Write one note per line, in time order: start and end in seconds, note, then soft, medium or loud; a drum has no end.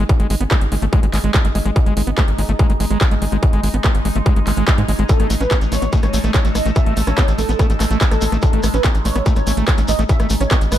0.00 5.09 G#3 medium
0.00 10.78 G#3 medium
0.00 10.78 D#4 medium
0.00 5.09 G#4 medium
0.00 5.09 D#5 loud
0.00 5.09 D#6 medium
0.09 kick loud
0.09 closed hi-hat medium
0.20 0.26 G#1 medium
0.20 0.27 G#3 medium
0.20 closed hi-hat medium
0.30 0.36 G#1 loud
0.30 0.35 G#3 medium
0.30 open hi-hat loud
0.41 0.47 G#1 medium
0.41 0.44 B3 medium
0.41 closed hi-hat medium
0.51 0.56 A3 loud
0.51 kick loud
0.51 clap loud
0.51 closed hi-hat medium
0.61 0.67 G#1 medium
0.61 closed hi-hat medium
0.72 0.78 G#1 loud
0.72 0.75 G#3 loud
0.72 open hi-hat loud
0.82 0.88 G#1 medium
0.82 0.85 A3 medium
0.82 closed hi-hat medium
0.93 1.00 G#3 medium
0.93 kick loud
0.93 closed hi-hat medium
1.03 1.09 G#1 medium
1.03 1.06 G#3 medium
1.03 closed hi-hat medium
1.13 1.20 G#1 loud
1.13 1.19 G#3 loud
1.13 clap medium
1.13 open hi-hat loud
1.24 1.30 G#1 medium
1.24 1.31 G#3 medium
1.24 closed hi-hat medium
1.34 1.37 G#3 medium
1.34 kick loud
1.34 clap loud
1.34 closed hi-hat medium
1.45 1.51 G#1 medium
1.45 1.48 G#3 loud
1.45 closed hi-hat medium
1.55 1.61 G#1 loud
1.55 1.58 G#3 loud
1.55 open hi-hat medium
1.66 1.72 G#1 loud
1.66 1.71 G#3 medium
1.66 closed hi-hat medium
1.76 kick loud
1.76 closed hi-hat medium
1.86 1.92 G#1 medium
1.86 1.94 G#3 medium
1.86 closed hi-hat medium
1.97 2.03 G#1 loud
1.97 2.02 G#3 medium
1.97 open hi-hat loud
2.07 2.13 G#1 medium
2.07 2.10 B3 medium
2.07 closed hi-hat medium
2.18 2.23 A3 loud
2.18 kick loud
2.18 clap loud
2.18 closed hi-hat medium
2.28 2.34 G#1 medium
2.28 closed hi-hat medium
2.38 2.45 G#1 loud
2.38 2.42 G#3 loud
2.38 open hi-hat medium
2.49 2.55 G#1 medium
2.49 2.52 A3 medium
2.49 closed hi-hat medium
2.59 2.67 G#3 medium
2.59 kick loud
2.59 closed hi-hat medium
2.70 2.76 G#1 medium
2.70 2.73 G#3 medium
2.70 closed hi-hat medium
2.80 2.86 G#1 loud
2.80 2.85 G#3 loud
2.80 open hi-hat loud
2.91 2.97 G#1 medium
2.91 2.98 G#3 medium
2.91 closed hi-hat soft
3.01 kick loud
3.01 clap loud
3.01 closed hi-hat medium
3.11 3.17 G#1 medium
3.11 3.14 G#3 loud
3.11 closed hi-hat medium
3.22 3.28 G#1 loud
3.22 3.25 G#3 loud
3.22 open hi-hat medium
3.32 3.38 G#1 medium
3.32 3.37 G#3 medium
3.32 closed hi-hat medium
3.43 kick loud
3.43 closed hi-hat medium
3.53 3.59 G#1 medium
3.53 3.61 G#3 medium
3.53 closed hi-hat medium
3.63 3.70 G#1 loud
3.63 3.69 G#3 medium
3.63 open hi-hat loud
3.74 3.80 G#1 medium
3.74 3.77 B3 medium
3.74 closed hi-hat medium
3.84 3.89 A3 loud
3.84 kick loud
3.84 clap loud
3.84 closed hi-hat medium
3.95 4.01 G#1 medium
3.95 closed hi-hat medium
4.05 4.11 G#1 loud
4.05 4.08 G#3 loud
4.05 open hi-hat medium
4.16 4.22 G#1 medium
4.16 4.19 A3 medium
4.16 closed hi-hat medium
4.26 4.34 G#3 medium
4.26 kick loud
4.26 closed hi-hat medium
4.36 4.43 G#1 medium
4.36 4.39 G#3 medium
4.36 closed hi-hat medium
4.47 4.53 G#1 loud
4.47 4.52 G#3 loud
4.47 clap medium
4.47 open hi-hat loud
4.57 4.63 G#1 medium
4.57 4.65 G#3 medium
4.57 closed hi-hat medium
4.68 kick loud
4.68 clap loud
4.68 closed hi-hat medium
4.78 4.84 G#2 medium
4.78 4.81 G#3 loud
4.78 closed hi-hat soft
4.88 4.95 G#1 loud
4.88 4.92 G#3 loud
4.88 open hi-hat medium
4.99 5.05 G#1 loud
4.99 5.04 G#3 medium
4.99 closed hi-hat medium
5.09 5.27 A4 loud
5.09 kick loud
5.09 closed hi-hat medium
5.09 shekere medium
5.16 10.78 A5 medium
5.20 5.26 A1 medium
5.20 5.27 A3 medium
5.20 cross-stick soft
5.20 closed hi-hat medium
5.30 5.36 A1 loud
5.30 5.35 A3 medium
5.30 open hi-hat loud
5.30 shekere medium
5.40 5.47 A1 medium
5.40 5.44 C#4 medium
5.40 5.59 B4 loud
5.40 10.78 E6 medium
5.40 closed hi-hat medium
5.40 shekere soft
5.51 5.56 B3 loud
5.51 kick loud
5.51 cross-stick medium
5.51 clap loud
5.51 closed hi-hat medium
5.51 shekere medium
5.61 5.68 A1 medium
5.61 closed hi-hat medium
5.61 shekere soft
5.72 5.78 A1 loud
5.72 5.75 A3 loud
5.72 5.90 C#5 medium
5.72 cross-stick soft
5.72 open hi-hat medium
5.72 shekere medium
5.82 5.88 A1 medium
5.82 5.85 B3 medium
5.82 closed hi-hat medium
5.82 shekere soft
5.93 6.00 A3 medium
5.93 kick loud
5.93 closed hi-hat medium
5.93 shekere medium
6.03 6.09 A1 medium
6.03 6.06 A3 medium
6.03 6.21 C#5 loud
6.03 cross-stick medium
6.03 closed hi-hat medium
6.03 shekere soft
6.13 6.20 A1 loud
6.13 6.19 A3 loud
6.13 open hi-hat loud
6.13 shekere loud
6.24 6.30 A1 medium
6.24 6.31 A3 medium
6.24 cross-stick soft
6.24 closed hi-hat medium
6.24 shekere soft
6.34 6.37 A3 medium
6.34 6.46 C#5 medium
6.34 kick loud
6.34 clap loud
6.34 closed hi-hat medium
6.34 shekere medium
6.45 6.51 A1 medium
6.45 6.48 A3 loud
6.45 closed hi-hat soft
6.45 shekere soft
6.55 6.61 A1 loud
6.55 6.58 A3 loud
6.55 6.67 D#5 medium
6.55 cross-stick medium
6.55 open hi-hat medium
6.55 shekere medium
6.66 6.72 A1 medium
6.66 6.71 A3 medium
6.66 closed hi-hat medium
6.66 shekere soft
6.76 6.94 E5 loud
6.76 kick loud
6.76 cross-stick soft
6.76 closed hi-hat medium
6.76 shekere medium
6.86 6.92 A1 medium
6.86 6.94 A3 medium
6.86 closed hi-hat medium
6.97 7.03 A1 loud
6.97 7.02 A3 medium
6.97 open hi-hat loud
6.97 shekere medium
7.07 7.13 A1 medium
7.07 7.10 C#4 medium
7.07 7.25 C#5 loud
7.07 cross-stick medium
7.07 closed hi-hat medium
7.07 shekere soft
7.17 7.23 B3 loud
7.17 kick loud
7.17 clap loud
7.17 closed hi-hat medium
7.17 shekere medium
7.28 7.34 A1 medium
7.28 cross-stick soft
7.28 closed hi-hat medium
7.28 shekere soft
7.38 7.45 A1 loud
7.38 7.42 A3 loud
7.38 7.63 A4 medium
7.38 open hi-hat medium
7.38 shekere medium
7.49 7.55 A1 medium
7.49 7.52 B3 medium
7.49 closed hi-hat medium
7.49 shekere soft
7.59 7.67 A3 medium
7.59 kick loud
7.59 cross-stick medium
7.59 closed hi-hat medium
7.59 shekere soft
7.70 7.76 A1 medium
7.70 7.73 A3 medium
7.70 closed hi-hat medium
7.70 shekere soft
7.80 7.86 A1 loud
7.80 7.85 A3 loud
7.80 cross-stick soft
7.80 clap medium
7.80 open hi-hat loud
7.80 shekere medium
7.91 7.97 A1 loud
7.91 7.98 A3 medium
7.91 closed hi-hat medium
7.91 shekere soft
8.01 8.04 A3 medium
8.01 kick loud
8.01 clap loud
8.01 closed hi-hat medium
8.01 shekere soft
8.11 8.18 A1 medium
8.11 8.14 A3 loud
8.11 8.29 A4 medium
8.11 cross-stick medium
8.11 closed hi-hat medium
8.11 shekere soft
8.21 8.28 A1 loud
8.21 8.25 A3 loud
8.21 open hi-hat medium
8.21 shekere loud
8.32 8.38 A1 loud
8.32 8.37 A3 medium
8.32 cross-stick soft
8.32 closed hi-hat medium
8.32 shekere soft
8.42 8.61 A4 loud
8.42 kick loud
8.42 closed hi-hat medium
8.42 shekere medium
8.53 8.59 A1 medium
8.53 8.61 A3 medium
8.53 closed hi-hat medium
8.63 8.70 A1 loud
8.63 8.69 A3 medium
8.63 cross-stick medium
8.63 open hi-hat loud
8.63 shekere medium
8.74 8.80 A1 medium
8.74 8.77 C#4 medium
8.74 8.92 B4 medium
8.74 closed hi-hat medium
8.74 shekere soft
8.84 8.89 B3 loud
8.84 kick loud
8.84 cross-stick soft
8.84 clap loud
8.84 closed hi-hat medium
8.84 shekere soft
8.94 9.01 A1 medium
8.94 closed hi-hat medium
8.94 shekere soft
9.05 9.11 A1 loud
9.05 9.08 A3 loud
9.05 9.23 C#5 loud
9.05 open hi-hat medium
9.05 shekere medium
9.15 9.22 A1 medium
9.15 9.19 B3 medium
9.15 cross-stick medium
9.15 closed hi-hat medium
9.15 shekere soft
9.26 9.34 A3 medium
9.26 kick loud
9.26 closed hi-hat medium
9.26 shekere medium
9.36 9.42 A1 medium
9.36 9.39 A3 medium
9.36 9.54 C#5 loud
9.36 cross-stick soft
9.36 closed hi-hat medium
9.36 shekere soft
9.47 9.53 A1 loud
9.47 9.52 A3 loud
9.47 open hi-hat loud
9.47 shekere medium
9.57 9.63 A1 medium
9.57 9.65 A3 medium
9.57 closed hi-hat medium
9.57 shekere soft
9.67 9.80 C#5 medium
9.67 kick loud
9.67 cross-stick medium
9.67 clap loud
9.67 closed hi-hat medium
9.67 shekere medium
9.78 9.84 A1 medium
9.78 9.81 A3 loud
9.78 closed hi-hat medium
9.78 shekere soft
9.88 9.95 A1 loud
9.88 9.91 A3 loud
9.88 10.01 D#5 medium
9.88 cross-stick soft
9.88 open hi-hat medium
9.88 shekere loud
9.99 10.05 A1 loud
9.99 10.04 A3 medium
9.99 closed hi-hat medium
9.99 shekere soft
10.09 10.27 E5 medium
10.09 kick loud
10.09 closed hi-hat medium
10.09 shekere soft
10.20 10.26 A1 medium
10.20 10.27 A3 medium
10.20 cross-stick medium
10.20 closed hi-hat medium
10.20 shekere soft
10.30 10.36 A1 loud
10.30 10.35 A3 medium
10.30 open hi-hat loud
10.30 shekere medium
10.41 10.47 A1 medium
10.41 10.44 C#4 medium
10.41 10.59 C#5 loud
10.41 cross-stick soft
10.41 closed hi-hat medium
10.41 shekere soft
10.51 10.56 B3 loud
10.51 kick loud
10.51 clap loud
10.51 closed hi-hat medium
10.51 shekere soft
10.61 10.67 A1 medium
10.61 closed hi-hat medium
10.61 shekere soft
10.72 10.78 A1 loud
10.72 10.75 A3 loud
10.72 10.78 B4 medium
10.72 cross-stick medium
10.72 open hi-hat medium
10.72 shekere medium